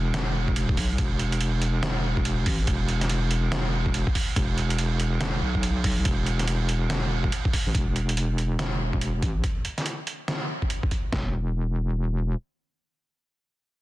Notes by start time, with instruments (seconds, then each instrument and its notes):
Already playing: wobble bass E1
0.14 snare, closed hi-hat, crash
0.48 kick
0.56 wobble bass E1, closed hi-hat, crash
0.69 kick
0.77 wobble bass B1, kick, open hi-hat
0.98 wobble bass E1, kick, closed hi-hat, crash
1.19 closed hi-hat
1.32 closed hi-hat
1.41 closed hi-hat, crash
1.62 closed hi-hat
1.83 snare, closed hi-hat, crash
2.17 kick
2.25 closed hi-hat, crash
2.46 wobble bass A1, kick, open hi-hat
2.67 wobble bass E1, kick, closed hi-hat, crash
2.88 closed hi-hat
3.01 snare, closed hi-hat
3.09 closed hi-hat, crash
3.31 closed hi-hat
3.52 snare, closed hi-hat, crash
3.86 kick
3.94 closed hi-hat, crash
4.07 kick
4.15 kick, open hi-hat
4.36 wobble bass E1, kick, closed hi-hat, crash
4.58 closed hi-hat
4.70 closed hi-hat
4.78 closed hi-hat, crash
5.00 closed hi-hat
5.21 snare, closed hi-hat, crash
5.42 wobble bass B1
5.55 kick
5.63 closed hi-hat, crash
5.84 kick, open hi-hat
6.05 wobble bass E1, kick, closed hi-hat, crash
6.26 closed hi-hat
6.39 snare, closed hi-hat
6.48 closed hi-hat, crash
6.69 closed hi-hat
6.90 snare, closed hi-hat, crash
7.24 kick
7.32 closed hi-hat, crash
7.45 kick
7.53 kick, open hi-hat
7.66 wobble bass A1
7.74 wobble bass E1, kick, closed hi-hat
7.96 closed hi-hat
8.09 closed hi-hat
8.17 closed hi-hat
8.38 closed hi-hat
8.59 snare, closed hi-hat
8.93 kick
9.01 closed hi-hat
9.22 wobble bass A1, kick, closed hi-hat
9.44 kick, closed hi-hat
9.65 closed hi-hat
9.78 snare, closed hi-hat
9.86 closed hi-hat
10.07 closed hi-hat
10.28 snare, closed hi-hat
10.62 kick
10.70 closed hi-hat
10.83 kick
10.91 kick, closed hi-hat
11.12 wobble bass E1, kick, snare